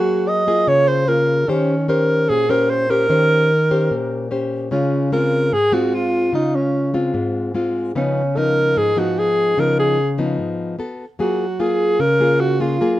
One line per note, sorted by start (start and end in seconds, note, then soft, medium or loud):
0.00 0.65 F#3 medium
0.00 0.44 A#3 medium
0.00 0.30 F#4 medium
0.00 0.44 G#4 medium
0.29 0.70 D#5 medium
0.47 1.04 A#3 medium
0.47 1.05 F4 medium
0.47 1.05 G#4 medium
0.67 1.46 C#3 medium
0.67 0.89 C#5 loud
0.87 1.10 C5 medium
1.07 1.45 A#3 medium
1.07 1.45 F4 medium
1.07 1.45 G#4 medium
1.07 1.50 A#4 medium
1.48 2.27 D#3 medium
1.48 1.74 C#4 soft
1.48 1.88 C#4 medium
1.48 1.74 G4 medium
1.48 1.75 C5 medium
1.88 2.46 C#4 medium
1.88 2.46 G4 medium
1.88 2.31 A#4 medium
1.88 2.46 C5 medium
2.29 3.08 A#2 medium
2.29 2.52 G#4 loud
2.50 2.86 C#4 medium
2.50 2.87 G4 medium
2.50 2.71 A#4 medium
2.50 2.87 C5 medium
2.70 2.92 C5 medium
2.90 3.07 C#4 medium
2.90 3.07 G4 medium
2.90 4.31 A#4 loud
2.90 3.07 C5 medium
3.10 3.88 D#3 medium
3.10 3.50 C#4 soft
3.10 3.50 G4 medium
3.10 3.50 C5 medium
3.70 4.28 C#4 medium
3.70 4.28 G4 medium
3.70 4.28 C5 medium
3.91 4.69 A#2 medium
4.31 4.68 C#4 soft
4.31 4.68 G4 soft
4.31 4.69 C5 soft
4.71 5.50 C#3 medium
4.71 5.09 G#3 medium
4.71 5.09 C#4 medium
4.71 5.09 F4 medium
5.12 5.52 G#3 soft
5.12 5.52 C4 medium
5.12 5.53 F4 medium
5.12 5.55 A#4 medium
5.52 6.31 G#2 medium
5.52 5.75 G#4 loud
5.72 6.30 G#3 medium
5.72 6.30 C4 medium
5.72 6.30 F4 medium
5.72 5.96 F#4 medium
5.94 6.34 F4 medium
6.33 7.12 C#3 medium
6.33 6.90 G#3 medium
6.33 6.57 D#4 medium
6.33 6.91 F4 medium
6.55 6.95 C#4 medium
6.94 7.51 G#3 medium
6.94 7.51 C4 medium
6.94 7.51 F4 medium
7.14 7.93 G#2 medium
7.55 7.92 G#3 soft
7.55 7.92 C4 medium
7.55 7.92 F4 medium
7.95 8.74 C#3 medium
7.95 8.21 F3 medium
7.95 8.21 B3 medium
7.95 8.38 C#4 medium
7.95 8.21 D#4 medium
8.37 8.93 F3 medium
8.37 8.94 B3 medium
8.37 8.94 D#4 medium
8.37 8.79 A#4 medium
8.77 9.55 G#2 medium
8.77 9.00 G#4 loud
8.96 9.54 F3 medium
8.96 9.54 B3 medium
8.96 9.54 D#4 medium
8.96 9.20 F#4 medium
9.19 9.61 G#4 medium
9.57 10.36 C#3 medium
9.57 9.97 F3 medium
9.57 9.97 B3 soft
9.57 9.98 D#4 medium
9.57 9.78 A#4 medium
9.79 10.16 G#4 medium
10.18 10.75 F3 medium
10.18 10.75 B3 medium
10.18 10.75 D#4 medium
10.38 10.76 G#2 medium
10.79 11.04 B3 medium
10.79 11.04 F#4 soft
10.79 11.05 A4 medium
11.19 11.98 F#3 medium
11.19 11.45 A#3 soft
11.19 11.45 F4 soft
11.19 11.62 F#4 medium
11.19 11.45 G#4 soft
11.59 11.99 A#3 medium
11.59 11.99 F4 soft
11.59 12.00 G#4 medium
11.59 12.02 G#4 medium
11.99 12.78 C#3 medium
11.99 12.42 A#4 loud
12.20 12.57 A#3 medium
12.20 12.57 F4 medium
12.20 12.57 G#4 medium
12.40 12.62 F#4 medium
12.60 12.77 A#3 medium
12.60 12.77 F4 medium
12.60 13.00 F4 medium
12.60 12.77 G#4 medium
12.80 13.00 F#3 medium
12.80 13.00 A#3 medium
12.80 13.00 F4 soft
12.80 13.00 G#4 medium